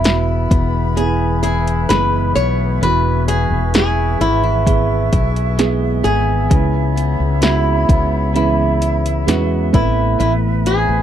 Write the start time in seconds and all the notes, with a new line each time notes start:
Already playing: E1 E2 E3 B3 E4 G#4 B4 E5 B5
0.04 B3 E4 F#4, snare, closed hi-hat
0.50 E1 B3, kick, closed hi-hat
0.96 E3 B3 E4 G#4, closed hi-hat
1.43 E4 G#4, closed hi-hat
1.67 closed hi-hat
1.89 F#1 G#3 B3 E4 G#4 B4, snare, closed hi-hat
2.35 B1 B3 C#5, closed hi-hat
2.82 E1 E2 E3 B3 E4 F#4 B4 C#6, closed hi-hat
3.28 B3 G#4, closed hi-hat
3.50 E1
3.74 B3 E4 G#4, snare, closed hi-hat
4.21 G#1 B3 E4, closed hi-hat
4.44 E4
4.66 E3 B3 E4 G#4, kick, closed hi-hat
5.13 B1 E4, kick, closed hi-hat
5.36 closed hi-hat
5.58 G#3 B3 E4 G#4, snare, closed hi-hat
6.04 G#1 B3 G#4, closed hi-hat
6.50 C#2 C#3 G#3 B3 C#4 E4 B4 C#5 B5, kick, closed hi-hat
6.96 B3, closed hi-hat
7.20 C#2
7.41 G#3 B3 C#4 E4 F#4, snare, closed hi-hat
7.89 C#2 B3, kick, closed hi-hat
8.34 E3 G#3 B3 C#4 E4 B4, closed hi-hat
8.81 E4, closed hi-hat
9.06 closed hi-hat
9.27 E2 G#3 B3 C#4 E4 F#4 B4, snare, closed hi-hat
9.72 A1 A2 A3 B3 C4 E4 B4 B5, kick, closed hi-hat
10.19 A1 A2 E4, closed hi-hat
10.66 C4 G#4, closed hi-hat
10.89 A1